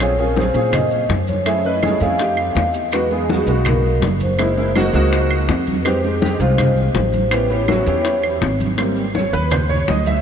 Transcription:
Already playing: A#1
0.00 C4 C#4 F4 G#4 C#5, high bongo, high conga, claves, maracas
0.18 C4 C#4 F4 G#4 A#4, high conga, maracas
0.36 C4 C#4 F4 G#4 C5, high bongo, high conga, maracas
0.54 A#2 C4 C#4 F4 G#4, high conga, maracas
0.73 D#5, high bongo, high conga, low conga, claves, maracas
0.91 high conga, maracas
1.09 F#2, high bongo, low bongo, high conga, maracas
1.28 C#5, high conga, maracas
1.46 A3 C#4 E4 G#4 E5, high bongo, high conga, claves, maracas
1.64 A3 C#4 E4 B4 D#5, high bongo, high conga, maracas
1.82 A3 C#4 E4 G#4, high bongo, high conga, claves, maracas
2.00 F2 A3 C#4 E4 G#4 F5, high bongo, high conga, maracas
2.19 A3 C4 D#4 G4, high bongo, high conga, maracas
2.37 high bongo, high conga, claves, maracas
2.55 E2, high bongo, low bongo, high conga, maracas
2.74 maracas
2.92 G#3 B3 D#4 F#4 B4, high bongo, high conga, claves, maracas
3.10 G#3 B3 D#4 G#4, high conga, maracas
3.29 G#3 B3 D#4 F#4, high bongo, high conga, maracas
3.46 B1 G#3 B3 D#4 F#4, high conga, maracas
3.65 A#4, high bongo, high conga, low conga, claves, maracas
3.84 high conga, maracas
4.02 F#1, high bongo, low bongo, high conga, maracas
4.20 C5, high conga, maracas
4.38 G#3 A#3 D#4 E4, high bongo, high conga, claves, maracas
4.56 G#3 A#3 D#4 E4, high bongo, high conga, maracas
4.75 G#3 A#3 D#4 F#4, high bongo, high conga, claves, maracas
4.93 C#2 G#3 A#3 D#4 F#4, high bongo, high conga, maracas
5.12 high bongo, high conga, maracas
5.31 high bongo, high conga, claves, maracas
5.48 F2, high bongo, low bongo, high conga, maracas
5.67 high conga, maracas
5.83 G#3 C4 D#4 G4 B4 C5, high bongo, high conga, claves, maracas
6.03 G#3 C4 D#4 G4 G#4, high conga, maracas
6.21 G#3 C4 D#4 G4, high bongo, high conga, maracas
6.39 C2 G#3 C4 D#4 F4 C5, high conga, maracas
6.58 high bongo, high conga, low conga, claves, maracas
6.77 high conga, maracas
6.94 A1 C5, high bongo, low bongo, high conga, maracas
7.13 high conga, maracas
7.31 B3 C#4 E4 G4 B4, high bongo, high conga, claves, maracas
7.50 B3 C#4 E4 G4 C#5, high bongo, high conga, maracas
7.68 B3 C#4 E4 F#4, high bongo, high conga, claves, maracas
7.86 E2 B3 C#4 E4 G4, high bongo, high conga, maracas
8.05 high bongo, high conga, maracas
8.23 high bongo, high conga, claves, maracas
8.41 G#1, high bongo, low bongo, high conga, maracas
8.60 high conga, maracas
8.78 G3 A#3 C4, high bongo, high conga, claves, maracas
8.96 high conga, maracas
9.15 C#5, high bongo, high conga, maracas
9.33 D#2 B4, high conga, maracas
9.51 C5, high bongo, high conga, low conga, claves, maracas
9.69 C#5, high conga, low conga, maracas
9.88 D2 D#5, high bongo, low bongo, high conga, maracas
10.06 E5, high conga, maracas

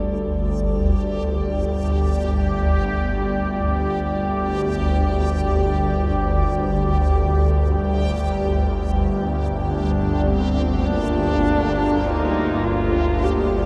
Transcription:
Already playing: G1 D2 G3 G4 A4 D5
0.98 G4
9.65 G2 D4
10.27 C4
10.50 A#3 F4
10.85 D4
12.05 D#4
12.64 F4
13.24 G4

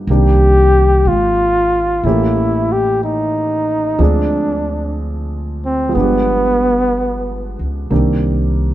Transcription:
0.07 C2 D#3 A#3 C4 D4 G4
0.11 G4
1.05 G#1 F4
2.03 A1 E3 A3 A#3 C#4 E4 G4
2.72 G4
3.04 D#4
3.99 D2 F3 G#3 C4 D4 G#4
4.03 D4
5.66 C4
5.89 F3 G#3
5.95 G1 B3 D4
6.00 G4
7.59 C#2
7.90 C2 D#3 A#3 C4 D4 G4

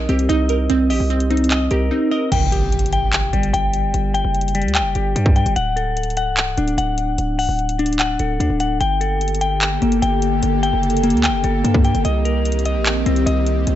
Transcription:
Already playing: C4 D#4 A#4 D#5
0.09 C2 C4 G4, closed hi-hat
0.19 closed hi-hat
0.29 C2 D#4 D#5, closed hi-hat
0.49 A#4, closed hi-hat
0.70 C2 C4, closed hi-hat
0.90 A#1 G4 D#5, open hi-hat
1.00 C2
1.10 C4, closed hi-hat
1.20 closed hi-hat
1.30 C4 D#4, closed hi-hat
1.37 closed hi-hat
1.44 closed hi-hat
1.51 D#5, clap, closed hi-hat
1.71 C2 G4 A#4, closed hi-hat
1.91 C4 D#4
2.11 A#4 D#5
2.32 G1 G5, closed hi-hat, crash, impact
2.52 G4, closed hi-hat
2.72 closed hi-hat
2.79 closed hi-hat
2.86 closed hi-hat
2.93 G5, closed hi-hat
3.13 clap, closed hi-hat
3.33 G1 G3, closed hi-hat
3.43 closed hi-hat
3.53 G1 G5, closed hi-hat
3.74 closed hi-hat
3.94 G1, closed hi-hat
4.14 G5, closed hi-hat
4.24 F#1
4.35 closed hi-hat
4.41 closed hi-hat
4.48 closed hi-hat
4.55 G3, closed hi-hat
4.62 D2, closed hi-hat
4.68 closed hi-hat
4.75 G5, clap, closed hi-hat
4.80 F#1
4.95 G1 G4, closed hi-hat
5.16 G2 G3, closed hi-hat
5.26 kick
5.36 G5, closed hi-hat
5.46 G1, closed hi-hat
5.56 D1 F#5, closed hi-hat
5.76 A4, closed hi-hat
5.97 closed hi-hat
6.03 closed hi-hat
6.10 closed hi-hat
6.17 F#5, closed hi-hat
6.27 C1
6.37 clap, closed hi-hat
6.58 D1 D4, closed hi-hat
6.68 closed hi-hat
6.78 D1 F#5, closed hi-hat
6.98 closed hi-hat
7.18 D1, closed hi-hat
7.39 C1 F#5, open hi-hat
7.49 D1
7.59 closed hi-hat
7.69 closed hi-hat
7.79 D4, closed hi-hat
7.86 closed hi-hat
7.93 closed hi-hat
7.99 F#5, clap, closed hi-hat
8.19 D1 A4, closed hi-hat
8.40 D2 D4, closed hi-hat
8.50 D1
8.60 F#5, closed hi-hat
8.81 G1 D3 A#3 G4 A4 G5, closed hi-hat
9.01 A4, closed hi-hat
9.21 closed hi-hat
9.28 closed hi-hat
9.35 closed hi-hat
9.41 G5, closed hi-hat
9.62 clap, closed hi-hat
9.82 G1 A#3, closed hi-hat
9.92 closed hi-hat
10.02 G1 G5, closed hi-hat
10.22 closed hi-hat
10.43 G1, closed hi-hat
10.63 G5, closed hi-hat
10.73 F#1
10.83 closed hi-hat
10.90 closed hi-hat
10.97 closed hi-hat
11.03 A#3, closed hi-hat
11.10 D2, closed hi-hat
11.17 closed hi-hat
11.24 G5, clap, closed hi-hat
11.29 F#1
11.44 G1 A4, closed hi-hat
11.64 G2 A#3, closed hi-hat
11.74 kick
11.85 G5, closed hi-hat
11.95 G1, closed hi-hat
12.05 C2 D#3 C4 G4 D#5, closed hi-hat
12.25 A#4, closed hi-hat
12.45 closed hi-hat
12.52 closed hi-hat
12.59 closed hi-hat
12.65 D#5, closed hi-hat
12.76 A#1
12.86 clap, closed hi-hat
13.06 C2 C4, closed hi-hat
13.16 closed hi-hat
13.26 C2 D#5, closed hi-hat
13.47 closed hi-hat
13.67 C2, closed hi-hat

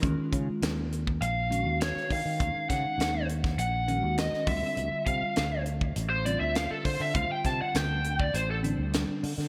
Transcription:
0.02 D#2 D#3 G#3 C#4 F4, kick, closed hi-hat
0.19 muted fretless electric bass stroke
0.33 C#3, kick, closed hi-hat
0.49 muted fretless electric bass stroke
0.62 D#2, snare, closed hi-hat
0.92 closed hi-hat
1.07 kick
1.21 A#1 F5, closed hi-hat
1.50 D#3 G#3 C#4 F#4, closed hi-hat
1.65 D#2
1.81 C#5, snare, closed hi-hat
1.96 muted fretless electric bass stroke, snare
2.10 D#3 F5, kick, open hi-hat
2.25 D#3
2.40 D#2 D#3 G#3 C#4 D#4, kick, closed hi-hat
2.70 C#3 F#5, kick, snare, closed hi-hat
2.84 muted fretless electric bass stroke
2.98 D#2, snare, closed hi-hat
3.29 closed hi-hat
3.44 kick, snare
3.57 A#1 F#5, closed hi-hat
3.88 D#3 G#3 C#4 F#4, closed hi-hat
4.03 D#2
4.18 D#5, snare, closed hi-hat
4.33 muted fretless electric bass stroke, snare
4.47 D2 D3 G3 C4 F4 E5, kick, open hi-hat
4.62 D3
4.77 D2, closed hi-hat
5.06 C3 F5, kick, closed hi-hat
5.22 muted fretless electric bass stroke
5.36 D2, snare, closed hi-hat
5.66 closed hi-hat
5.81 kick
5.96 A1, closed hi-hat
6.10 C5
6.25 D3 G3 C4 F4 D5, closed hi-hat
6.40 D2 E5
6.55 F5, snare, closed hi-hat
6.71 A4
6.85 D3 C5, kick, open hi-hat
7.00 D3 E5
7.14 D2 D3 G3 C4 F4 F5, kick, closed hi-hat
7.29 G5, muted fretless electric bass stroke
7.44 C3 A5, kick, snare, closed hi-hat
7.61 F#5, muted fretless electric bass stroke
7.75 D2 G5, snare, closed hi-hat
8.04 closed hi-hat
8.20 D5, kick
8.34 A1 C5, closed hi-hat
8.51 A4
8.63 D3 G3 C4 D4, closed hi-hat
8.78 D2
8.93 snare, closed hi-hat
9.09 muted fretless electric bass stroke
9.23 D3, open hi-hat
9.38 D3, snare

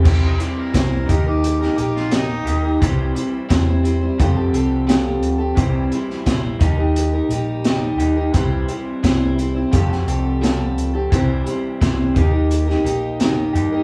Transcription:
0.04 C2 C3 E3 G3 C4 E4 G4 C5, kick, crash
0.23 D#4
0.39 G3 C4 E4 G4 C5, closed hi-hat
0.59 A#4
0.73 C2 C3 E3 G3 C4 E4 C5, kick, snare, closed hi-hat
1.06 D#2 D#3 A#3 D#4 G4, kick, closed hi-hat
1.10 A#4
1.26 D#4 G4 A#4
1.44 closed hi-hat
1.61 D#4 G4 A#4, snare
1.77 A#1 A#3 D#4 G4 A#4, closed hi-hat
1.96 F4, snare
2.11 D#3 A#3 D#4 G4 A#4, snare, closed hi-hat
2.45 D#2 D#3 A#3 D#4 G4, closed hi-hat
2.63 D#4 G4 A#4
2.81 C2 C3 E3 G3 C4 E4 G4 C5, kick, closed hi-hat
3.14 G3 C4 E4 C5, closed hi-hat
3.49 E2 C3 E3 G3 C4 E4 C5, kick, snare, closed hi-hat
3.83 G3 C4 E4 C5, closed hi-hat
4.01 G3 C4 E4 C5
4.19 F2 F3 G3 A3 C4 G4 A4, kick, closed hi-hat
4.35 C4 G4 A4
4.53 C2 G3 C4 G4 A4, closed hi-hat
4.87 F3 G3 C4 G4 A4, snare, closed hi-hat
5.22 D2, closed hi-hat
5.38 C4 G4 A4
5.56 C2 C3 E3 G3 C4 E4 G4 C5, kick, closed hi-hat
5.91 G3 C4 E4 C5, closed hi-hat
6.10 snare
6.26 A#1 C3 E3 G3 C4 E4 C5, kick, snare, closed hi-hat
6.59 D#2 D#3 G3 A#3 D#4 G4 A#4, kick, closed hi-hat
6.77 D#4 G4 A#4
6.96 closed hi-hat
7.13 D#4 G4 A#4
7.29 A#1 G3 D#4 G4, closed hi-hat
7.33 A#4
7.64 D#3 G3 D#4 G4 A#4, snare, closed hi-hat
7.98 D#2 D#3 A#3 D#4 G4, closed hi-hat
8.16 D#4 G4 A#4
8.34 C2 C3 E3 G3 C4 E4 G4 C5, kick, closed hi-hat
8.68 G3 C4 E4 C5, closed hi-hat
9.03 C2 C3 E3 G3 C4 E4 C5, kick, snare, closed hi-hat
9.38 G3 C4 E4 C5, closed hi-hat
9.55 G3 C4 E4 C5
9.71 F2 F3 G3 A3 C4 G4 A4, kick, closed hi-hat
9.89 C4 G4 A4, snare
10.06 C2 G3 C4 G4 A4, closed hi-hat
10.41 F3 G3 C4 G4 A4, snare, closed hi-hat
10.76 C#2, closed hi-hat
10.93 C4 G4 A4
11.12 C2 C3 E3 G3 C4 E4 G4 C5, kick, closed hi-hat
11.46 G3 C4 E4 C5, closed hi-hat
11.81 C2 C3 E3 G3 C4 E4 C5, kick, snare, closed hi-hat
12.14 D#2 D#3 A#3 D#4 G4 A#4, kick, closed hi-hat
12.32 D#4 G4 A#4
12.51 closed hi-hat
12.66 D#4 G4 A#4, snare
12.84 A#1 A#3 D#4 G4 A#4, closed hi-hat
13.20 D#3 A#3 D#4 G4 A#4, snare, closed hi-hat
13.53 G2 D#3 A#3 D#4 G4, closed hi-hat
13.72 D#4 G4 A#4

